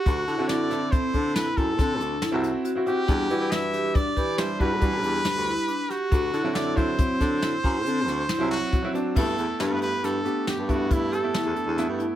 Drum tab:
CC |--------------|--------------|--------------|x-------------|
HH |xxxxxxxxxxxxxx|xxxxxxxxxxxxxx|xxxxxxxxxxxxxx|-xxxxxxxxxxxxx|
SD |--oo--o-o-o---|--o---o---o--o|--o--oo--oo---|--o-o-o---o-o-|
BD |o---oo-oo-----|o---oo-oo-----|o--ooo-o----o-|o------oo-----|